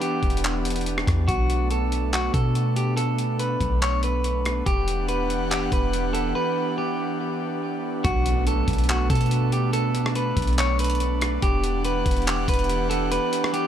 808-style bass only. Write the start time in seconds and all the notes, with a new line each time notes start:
0.23 E1
1.07 E2
1.28 B1
2.34 B2
3.61 B1
4.67 E1
5.72 E1
8.05 B1
8.68 B1
9.10 B2
10.37 B1
11.43 E1
12.06 E1
12.48 E1